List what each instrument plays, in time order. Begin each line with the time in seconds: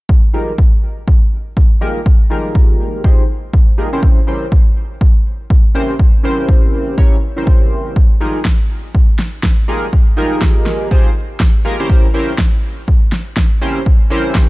0.09 kick
0.33 analog polysynth D#4 F4 G4 G#4 A#4
0.58 kick
1.08 kick
1.57 kick
1.81 analog polysynth D#4 F4 G4 G#4 A#4
2.06 kick
2.30 analog polysynth D#4 F4 G4 G#4 A#4
2.55 kick
3.04 analog polysynth D#4 F4 G4 G#4 C5, kick
3.54 kick
3.78 analog polysynth D#4 F4 G4 G#4 A#4
3.92 analog polysynth C#4 E4 G4 A#4 C5
4.03 kick
4.27 analog polysynth C#4 E4 G4 A#4 C5
4.52 kick
5.01 kick
5.50 kick
5.74 analog polysynth C#4 E4 G4 A#4 C5
5.99 kick
6.23 analog polysynth C#4 E4 G4 A#4 C5
6.49 kick
6.97 analog polysynth C#4 E4 G4 A#4 C#5, kick
7.36 analog polysynth C#4 E4 G4 A#4 C5
7.47 kick
7.96 kick
8.20 analog polysynth D#4 F4 G4 G#4 A#4
8.45 kick, snare
8.95 kick
9.19 snare
9.43 kick, snare
9.68 analog polysynth D#4 F4 G4 G#4 A#4
9.93 kick
10.17 analog polysynth D#4 F4 G4 G#4 A#4
10.42 kick, snare
10.66 snare
10.91 analog polysynth D#4 F4 G4 G#4 C5, kick
11.40 kick, snare
11.65 analog polysynth D#4 F4 G4 G#4 A#4
11.79 analog polysynth C#4 E4 G4 A#4 C5
11.90 kick
12.14 analog polysynth C#4 E4 G4 A#4 C5
12.38 kick, snare
12.88 kick
13.12 snare
13.37 kick, snare
13.61 analog polysynth C#4 E4 G4 A#4 C5
13.86 kick
14.10 analog polysynth C#4 E4 G4 A#4 C5
14.35 kick, snare